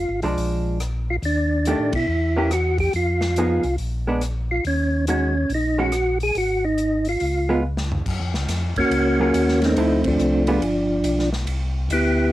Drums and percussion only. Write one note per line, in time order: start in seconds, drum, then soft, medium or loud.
0.22 open hi-hat soft
0.38 open hi-hat soft
0.80 cross-stick medium
0.80 closed hi-hat soft
1.23 open hi-hat soft
1.65 closed hi-hat soft
1.93 kick medium
1.93 ride medium
2.51 cross-stick medium
2.51 closed hi-hat soft
2.78 kick medium
2.78 open hi-hat soft
2.93 open hi-hat soft
3.21 snare soft
3.36 closed hi-hat soft
3.63 open hi-hat soft
3.78 open hi-hat soft
4.21 cross-stick soft
4.21 closed hi-hat soft
4.65 open hi-hat soft
5.07 closed hi-hat medium
5.50 open hi-hat soft
5.92 cross-stick medium
5.92 closed hi-hat soft
6.20 open hi-hat soft
6.35 open hi-hat soft
6.78 closed hi-hat soft
7.05 open hi-hat soft
7.20 open hi-hat soft
7.77 snare soft
7.92 floor tom medium
8.06 kick medium
8.06 crash medium
8.34 snare soft
8.48 snare soft
8.48 hi-hat pedal medium
8.48 ride medium
8.76 kick medium
8.76 ride soft
8.91 ride medium
9.34 hi-hat pedal soft
9.34 ride medium
9.48 snare soft
9.62 snare soft
9.62 ride soft
9.76 ride medium
10.04 kick medium
10.04 ride medium
10.19 hi-hat pedal medium
10.47 ride soft
10.62 ride soft
11.04 hi-hat pedal medium
11.04 ride medium
11.19 snare soft
11.33 snare soft
11.47 ride medium
11.90 hi-hat pedal medium
11.90 ride medium